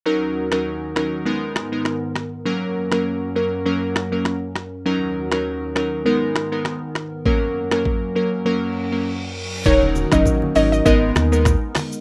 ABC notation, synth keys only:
X:1
M:4/4
L:1/16
Q:"Swing 16ths" 1/4=100
K:D#m
V:1 name="Synth keys"
[F,CDA]3 [F,CDA]3 [F,CDA]2 [G,B,DA]3 [G,B,DA] z4 | [F,A,CA]3 [F,A,CA]3 [F,A,CA]2 [F,A,CA]3 [F,A,CA] z4 | [F,CDA]3 [F,CDA]3 [F,CDA]2 [G,B,DA]3 [G,B,DA] z4 | [F,A,CA]3 [F,A,CA]3 [F,A,CA]2 [F,A,CA]3 [F,A,CA] z4 |
[F,CDA]3 [F,CDA]3 [F,CDA]2 [G,B,DA]3 [G,B,DA] z4 |]